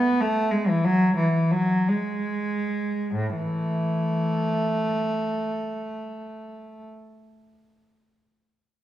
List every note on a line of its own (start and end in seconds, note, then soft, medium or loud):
0.00 0.20 B3 medium
0.20 0.52 A3 medium
0.51 0.67 G#3 medium
0.69 0.84 E3 medium
0.84 1.17 F#3 medium
1.17 1.51 E3 medium
1.51 1.88 F#3 medium
1.88 3.13 G#3 medium
3.14 3.36 A2 medium
3.36 4.95 E3 medium
3.36 6.84 A3 medium